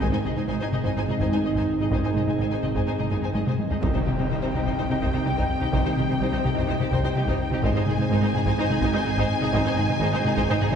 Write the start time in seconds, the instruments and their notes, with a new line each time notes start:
0.01 double bass section G#1, cello section G#2, analog synth bass G#2, analog synth pad D#3 C4 G#4 D#5, synth pluck G#3, french horn section C4 D#4, violin section C5 G#5, taiko
0.12 cello section G#2, analog synth bass G#2, synth pluck C4, viola section D#4, violin section C5 G#5
0.25 double bass section G#1, cello section G#2, analog synth bass G#3, synth pluck D#4, viola section D#4, violin section G#4 D#5, taiko mid
0.36 cello section G#2, analog synth bass G#3, synth pluck D#4, viola section D#4, violin section C5 G#5, taiko mid
0.48 double bass section G#1, cello section G#2, analog synth bass G#2, synth pluck G#3, viola section D#4, violin section C5 G#5
0.60 cello section G#2, analog synth bass G#2, viola section D#4, synth pluck G#4, violin section C5 G#5
0.72 double bass section G#1, cello section G#2, analog synth bass G#2, viola section D#4, violin section G#4 D#5, synth pluck G#4, taiko mid
0.84 analog synth bass G#2, cello section G#2, synth pluck G#3, viola section D#4, violin section C5 G#5, taiko
0.96 double bass section G#1, analog synth bass G#2, cello section G#2, synth pluck C4, viola section D#4, violin section C5 G#5
1.08 cello section G#2, analog synth bass G#3, synth pluck D#4, viola section D#4, violin section G#4 D#5, taiko mid
1.20 double bass section G#1, analog synth bass G#2, cello section G#2, synth pluck G#3, viola section D#4, violin section C5 G#5, taiko
1.32 cello section G#2, analog synth bass G#3, synth pluck D#4, viola section D#4, violin section C5 G#5
1.43 double bass section G#1, cello section G#2, analog synth bass G#3, synth pluck D#4, viola section D#4, violin section G#4 D#5
1.55 analog synth bass G#2, cello section G#2, synth pluck G#3, viola section D#4, violin section C5 G#5, taiko
1.68 analog synth bass G#2
1.79 analog synth bass G#2, cello section G#2, viola section D#4, synth pluck G#4, violin section G#4 D#5, taiko mid
1.91 double bass section G#1, analog synth bass G#2, cello section G#2, synth pluck G#3, viola section D#4, violin section C5 G#5, taiko
2.03 analog synth bass G#2, cello section G#2, synth pluck C4, viola section D#4, violin section C5 G#5
2.14 double bass section G#1, cello section G#2, analog synth bass G#3, synth pluck D#4, viola section D#4, violin section G#4 D#5, taiko mid
2.27 cello section G#2, analog synth bass G#3, viola section D#4, synth pluck D#4, violin section C5 G#5, taiko mid
2.38 double bass section G#1, cello section G#2, analog synth bass G#2, synth pluck G#3, viola section D#4, violin section C5 G#5
2.51 analog synth bass G#2, cello section G#2, viola section D#4, synth pluck G#4, violin section C5 G#5
2.62 double bass section G#1, analog synth bass G#2, cello section G#2, viola section D#4, violin section G#4 D#5, synth pluck G#4, taiko mid
2.75 analog synth bass G#2, cello section G#2, synth pluck G#3, viola section D#4, violin section C5 G#5, taiko
2.87 double bass section G#1, analog synth bass G#2, cello section G#2, synth pluck C4, viola section D#4, violin section C5 G#5
2.98 cello section G#2, analog synth bass G#3, synth pluck D#4, viola section D#4, violin section G#4 D#5, taiko mid
3.10 double bass section G#1, analog synth bass G#2, cello section G#2, synth pluck G#3, viola section D#4, violin section C5 G#5, taiko
3.22 cello section G#2, analog synth bass G#3, viola section D#4, synth pluck D#4, violin section C5 G#5
3.34 double bass section G#1, cello section G#2, analog synth bass G#3, viola section D#4, synth pluck D#4, violin section G#4 D#5, taiko high
3.45 analog synth bass G#2, cello section G#2, synth pluck G#3, viola section D#4, violin section C5 G#5, taiko mid
3.58 analog synth bass G#2, taiko high
3.70 analog synth bass G#2, cello section G#2, viola section D#4, violin section G#4 D#5, synth pluck G#4, taiko low
3.82 analog synth bass C2, double bass section C2, synth pluck C3, cello section C3, analog synth pad D#3 C4 G4 D#5, french horn section C4 D#4, viola section D#4, violin section C5 G5, taiko, impact
3.93 analog synth bass C2, cello section C3, synth pluck D#3, viola section D#4, violin section C5
4.06 double bass section C2, analog synth bass C3, cello section C3, synth pluck G3, viola section D#4, violin section G4, taiko mid
4.18 analog synth bass C3, cello section C3, synth pluck G3, viola section D#4, violin section C5, taiko mid
4.30 double bass section C2, analog synth bass C2, synth pluck C3, cello section C3, viola section D#4, violin section C5
4.41 analog synth bass C2, cello section C3, synth pluck C4, viola section D#4, violin section C5
4.53 analog synth bass C2, double bass section C2, cello section C3, synth pluck C4, viola section D#4, violin section G4, taiko mid
4.65 analog synth bass C2, synth pluck C3, cello section C3, viola section D#4, violin section C5, taiko
4.78 analog synth bass C2, double bass section C2, cello section C3, synth pluck D#3, viola section D#4, violin section C5
4.90 analog synth bass C3, cello section C3, synth pluck G3, viola section D#4, violin section G4, taiko mid
5.01 analog synth bass C2, double bass section C2, synth pluck C3, cello section C3, viola section D#4, violin section C5, taiko
5.13 cello section C3, analog synth bass C3, synth pluck G3, viola section D#4, violin section C5
5.25 double bass section C2, cello section C3, analog synth bass C3, synth pluck G3, viola section D#4, violin section G4
5.37 analog synth bass C2, cello section C3, synth pluck C3, viola section D#4, violin section C5, taiko
5.49 analog synth bass C2
5.61 analog synth bass C2, cello section C3, synth pluck C4, viola section D#4, violin section G4, taiko mid
5.72 analog synth bass C2, double bass section C2, cello section C3, synth pluck C3, viola section D#4, violin section C5, taiko
5.85 analog synth bass C2, cello section C3, synth pluck D#3, viola section D#4, violin section C5
5.96 double bass section C2, analog synth bass C3, cello section C3, synth pluck G3, viola section D#4, violin section G4, taiko mid
6.09 cello section C3, analog synth bass C3, synth pluck G3, viola section D#4, violin section C5, taiko mid
6.21 analog synth bass C2, double bass section C2, cello section C3, synth pluck C3, viola section D#4, violin section C5
6.32 analog synth bass C2, cello section C3, synth pluck C4, viola section D#4, violin section C5
6.44 double bass section C2, analog synth bass C2, cello section C3, synth pluck C4, viola section D#4, violin section G4, taiko mid
6.55 analog synth bass C2, cello section C3, synth pluck C3, viola section D#4, violin section C5, taiko
6.68 double bass section C2, analog synth bass C2, cello section C3, viola section D#4, violin section C5
6.79 analog synth bass C3, cello section C3, synth pluck G3, viola section D#4, violin section G4, taiko mid
6.92 analog synth bass C2, double bass section C2, cello section C3, synth pluck C3, viola section D#4, violin section C5, taiko
7.03 analog synth bass C3, cello section C3, synth pluck G3, viola section D#4, violin section C5
7.15 double bass section C2, analog synth bass C3, cello section C3, synth pluck G3, viola section D#4, violin section G4
7.26 analog synth bass C2, cello section C3, synth pluck C3, viola section D#4, violin section C5, taiko
7.38 analog synth bass C2
7.50 analog synth bass C2, cello section C3, synth pluck C4, viola section D#4, violin section G4, taiko mid
7.62 double bass section G#1, analog synth bass G#2, cello section G#2, analog synth pad D#3 C4 G#4 D#5, synth pluck G#3, french horn section C4 D#4, viola section D#4, violin section C5 G#5, taiko
7.74 analog synth bass G#2, cello section G#2, synth pluck C4, viola section D#4, violin section C5
7.86 double bass section G#1, cello section G#2, analog synth bass G#3, synth pluck D#4, viola section D#4, violin section G#4, taiko mid
7.98 cello section G#2, analog synth bass G#3, synth pluck D#4, viola section D#4, violin section C5, taiko mid
8.10 double bass section G#1, analog synth bass G#2, cello section G#2, synth pluck G#3, viola section D#4, violin section C5
8.22 analog synth bass G#2, cello section G#2, viola section D#4, synth pluck G#4, violin section C5
8.34 double bass section G#1, analog synth bass G#2, cello section G#2, viola section D#4, synth pluck G#4, violin section G#4, taiko mid
8.45 analog synth bass G#2, cello section G#2, synth pluck G#3, viola section D#4, violin section C5, taiko
8.58 double bass section G#1, analog synth bass G#2, cello section G#2, synth pluck C4, viola section D#4, violin section C5
8.70 cello section G#2, analog synth bass G#3, viola section D#4, synth pluck D#4, violin section G#4, taiko mid
8.81 double bass section G#1, cello section G#2, analog synth bass G#2, synth pluck G#3, viola section D#4, violin section C5, taiko
8.94 cello section G#2, analog synth bass G#3, viola section D#4, synth pluck D#4, violin section C5
9.05 double bass section G#1, cello section G#2, analog synth bass G#3, viola section D#4, synth pluck D#4, violin section G#4
9.17 analog synth bass G#2, cello section G#2, synth pluck G#3, viola section D#4, violin section C5, taiko
9.30 analog synth bass G#2
9.40 analog synth bass G#2, cello section G#2, viola section D#4, synth pluck G#4, violin section G#4, taiko mid
9.53 double bass section G#1, analog synth bass G#2, cello section G#2, synth pluck G#3, viola section D#4, violin section C5, taiko
9.64 analog synth bass G#2, cello section G#2, synth pluck C4, viola section D#4, violin section C5
9.77 double bass section G#1, cello section G#2, analog synth bass G#3, viola section D#4, synth pluck D#4, violin section G#4, taiko mid
9.89 cello section G#2, analog synth bass G#3, viola section D#4, synth pluck D#4, violin section C5, taiko mid
10.01 double bass section G#1, analog synth bass G#2, cello section G#2, synth pluck G#3, viola section D#4, violin section C5
10.13 analog synth bass G#2, cello section G#2, viola section D#4, synth pluck G#4, violin section C5
10.25 double bass section G#1, cello section G#2, analog synth bass G#2, viola section D#4, violin section G#4, synth pluck G#4, taiko mid
10.37 analog synth bass G#2, cello section G#2, synth pluck G#3, viola section D#4, violin section C5, taiko
10.48 double bass section G#1, cello section G#2, analog synth bass G#2, synth pluck C4, viola section D#4, violin section C5
10.61 cello section G#2, analog synth bass G#3, synth pluck D#4, viola section D#4, violin section G#4, taiko mid
10.72 cello section G#2, violin section C5